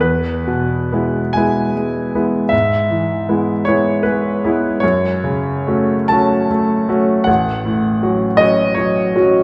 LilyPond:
<<
  \new Staff \with { instrumentName = "Grand piano" } { \time 6/8 \key e \major \tempo 4. = 52 b'4. gis''4. | e''4. cis''8 b'4 | cis''4. a''4. | fis''4. dis''8 cis''4 | }
  \new Staff \with { instrumentName = "Grand piano" } { \time 6/8 \key e \major e,8 b,8 <gis b e'>8 <gis b e'>8 gis8 <gis b e'>8 | gis,8 e8 <gis b e'>8 <gis b e'>8 gis8 <gis b e'>8 | fis,8 cis8 <a cis' fis'>8 <a cis' fis'>8 a8 <a cis' fis'>8 | a,,8 a,8 <fis cis' fis'>8 <fis cis' fis'>8 fis8 <fis cis' fis'>8 | }
>>